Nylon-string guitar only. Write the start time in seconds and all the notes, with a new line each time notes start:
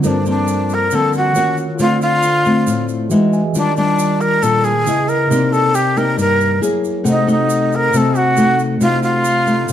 0.03 G2 F3 A#3 C4
0.26 F3 A#3 C4
0.92 D3 F3 A#3 C4
1.36 A#3 C#4 F#4
1.79 D3 A3 C4 F4
2.46 A3 C4 F4
2.66 A2
3.11 G#3 D#4 F#4
3.55 D#3 G3 D4 F4
3.77 G3 D4 F4
4.42 A#2 G3 D4 F4
4.87 B3 E4 G#4
5.30 C3 A#3 D#4 G4
5.96 A#3 D#4 G4
6.17 G2
6.61 A#3 E4 G#4
7.04 C3 A3 D#4 F#4
7.27 A3 D#4 F#4
7.93 C3 A3 D#4 F#4
8.37 A3 D#4 F#4
8.80 C3 A3 D#4 F#4
9.47 A3 D#4
9.69 C3